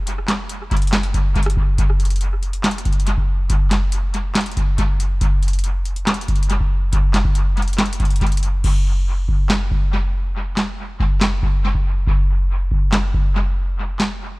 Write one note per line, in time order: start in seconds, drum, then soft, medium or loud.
0.07 closed hi-hat medium
0.28 snare loud
0.28 clap medium
0.28 closed hi-hat medium
0.49 closed hi-hat medium
0.71 kick medium
0.71 closed hi-hat soft
0.77 closed hi-hat medium
0.82 closed hi-hat medium
0.87 closed hi-hat medium
0.93 snare loud
0.93 clap loud
1.03 closed hi-hat medium
1.14 kick loud
1.14 closed hi-hat medium
1.36 kick loud
1.36 closed hi-hat medium
1.43 cross-stick medium
1.43 closed hi-hat medium
1.50 closed hi-hat medium
1.57 kick loud
1.78 kick loud
1.78 closed hi-hat medium
2.00 closed hi-hat medium
2.05 closed hi-hat medium
2.10 closed hi-hat medium
2.16 closed hi-hat medium
2.21 closed hi-hat medium
2.43 closed hi-hat medium
2.53 closed hi-hat medium
2.64 snare loud
2.64 clap medium
2.64 closed hi-hat medium
2.71 closed hi-hat medium
2.78 closed hi-hat medium
2.85 kick medium
2.85 closed hi-hat medium
2.93 closed hi-hat medium
3.00 closed hi-hat medium
3.07 closed hi-hat medium
3.18 kick medium
3.50 kick loud
3.50 closed hi-hat medium
3.71 snare loud
3.71 clap medium
3.71 closed hi-hat medium
3.92 closed hi-hat medium
4.14 closed hi-hat medium
4.35 snare loud
4.35 clap medium
4.35 closed hi-hat medium
4.41 closed hi-hat medium
4.46 closed hi-hat medium
4.51 closed hi-hat soft
4.57 kick medium
4.57 closed hi-hat medium
4.78 kick medium
4.78 closed hi-hat medium
5.00 closed hi-hat medium
5.21 kick loud
5.21 closed hi-hat medium
5.43 closed hi-hat medium
5.48 closed hi-hat medium
5.53 closed hi-hat medium
5.59 closed hi-hat medium
5.64 closed hi-hat medium
5.85 closed hi-hat medium
5.96 closed hi-hat medium
6.07 snare loud
6.07 clap medium
6.07 closed hi-hat medium
6.14 closed hi-hat medium
6.21 closed hi-hat medium
6.28 kick medium
6.28 closed hi-hat medium
6.36 closed hi-hat medium
6.43 closed hi-hat medium
6.50 closed hi-hat medium
6.60 kick medium
6.93 kick loud
6.93 closed hi-hat medium
7.14 snare loud
7.14 clap medium
7.14 closed hi-hat medium
7.25 kick loud
7.35 closed hi-hat medium
7.57 closed hi-hat soft
7.62 closed hi-hat medium
7.68 closed hi-hat medium
7.73 closed hi-hat medium
7.78 snare loud
7.78 clap loud
7.78 closed hi-hat soft
7.86 closed hi-hat medium
7.93 closed hi-hat medium
8.00 kick loud
8.00 closed hi-hat soft
8.05 closed hi-hat medium
8.10 closed hi-hat medium
8.16 closed hi-hat medium
8.21 kick medium
8.21 closed hi-hat soft
8.27 closed hi-hat medium
8.32 closed hi-hat medium
8.37 closed hi-hat medium
8.43 closed hi-hat medium
8.64 kick loud
8.64 crash loud
9.28 kick medium
9.50 snare loud
9.50 clap loud
9.71 kick loud
10.57 snare loud
10.57 clap medium
11.00 kick medium
11.21 snare loud
11.21 clap loud
11.43 kick medium
11.75 kick medium
12.07 kick loud
12.71 kick medium
12.93 snare loud
12.93 clap loud
13.14 kick loud
14.00 snare loud
14.00 clap medium